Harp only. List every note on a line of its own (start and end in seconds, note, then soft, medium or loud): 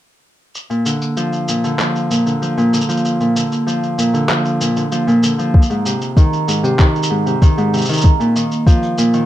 0.70 0.90 A#2 medium
0.86 1.53 D3 medium
1.17 1.68 F3 medium
1.48 1.68 A#2 medium
1.64 2.15 D3 medium
1.80 2.31 F3 medium
2.11 2.31 A#2 medium
2.26 2.62 D3 medium
2.42 2.78 F3 medium
2.57 2.78 A#2 medium
2.73 3.25 D3 medium
2.89 3.40 F3 medium
3.20 3.40 A#2 medium
3.36 4.03 D3 medium
3.67 4.18 F3 medium
3.98 4.18 A#2 medium
4.14 4.65 D3 medium
4.29 4.81 F3 medium
4.61 4.81 A#2 medium
4.76 5.12 D3 medium
4.92 5.28 F3 medium
5.07 5.28 A#2 medium
5.23 5.59 D3 medium
5.38 5.59 F3 medium
5.70 5.90 G#2 medium
5.86 6.21 C3 medium
6.17 6.68 D#3 medium
6.48 6.68 G#2 medium
6.63 6.84 C3 medium
6.79 7.31 D#3 medium
7.10 7.31 G#2 medium
7.26 7.46 C3 medium
7.42 7.78 D#3 medium
7.58 7.78 G#2 medium
7.73 7.93 C3 medium
7.89 8.09 D#3 medium
8.20 8.40 A#2 medium
8.35 9.03 D#3 medium
8.66 9.18 F3 medium
8.98 9.18 A#2 medium
9.13 9.26 D#3 medium